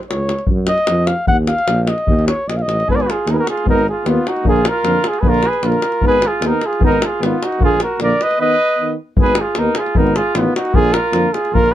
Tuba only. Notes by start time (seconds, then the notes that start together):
0.11 C#2
0.50 F#2
0.89 F2
1.28 D#2
1.68 A#1
2.08 D#2
2.47 A#1
2.66 A1
2.86 G#1
3.26 D#2
3.66 G#1
4.05 D#2
4.45 A#1
4.84 F2
5.23 A#1
5.63 A#1
6.03 G#1
6.41 D#2
6.81 G#1
7.20 G#1
7.59 A#1
8.00 A#1
9.18 G#1
9.58 D#2
9.97 G#1
10.34 A1
10.74 A#1
11.13 F2
11.52 A#1